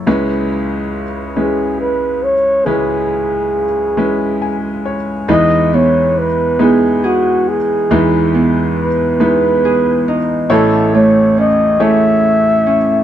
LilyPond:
<<
  \new Staff \with { instrumentName = "Flugelhorn" } { \time 6/8 \key e \major \tempo 4. = 46 r4. gis'8 b'8 cis''8 | gis'2~ gis'8 r8 | dis''8 cis''8 b'8 gis'8 fis'8 gis'8~ | gis'8 r8 b'8 b'4 r8 |
a'8 cis''8 dis''8 e''4. | }
  \new Staff \with { instrumentName = "Grand piano" } { \time 6/8 \key e \major << { r2. | r2 gis''8 cis''8 | r2. | r2. |
r2. | } \\ { <gis cis' e' b'>4 r8 <gis cis' e' b'>4 r8 | <gis cis' e' b'>4 r8 <gis cis' e' b'>4 r8 | <gis dis' e' b'>4 r8 <gis dis' e' b'>4 r8 | <gis dis' e' b'>4 r8 <gis dis' e' b'>4 r8 |
<a e' a' cis''>4 r8 <a e' gis' cis''>4 r8 | } >> }
  \new Staff \with { instrumentName = "Grand piano" } { \clef bass \time 6/8 \key e \major <cis, cis>2. | <cis, cis>2. | <e, e>2. | <e, e>2. |
<a,, a,>2. | }
  \new Staff \with { instrumentName = "Harp" } { \time 6/8 \key e \major r2. | r2. | e8 b4 b8 gis'4 | e8 b4 b8 gis'8 dis'8 |
e8 a8 cis'8 a4 cis'8 | }
>>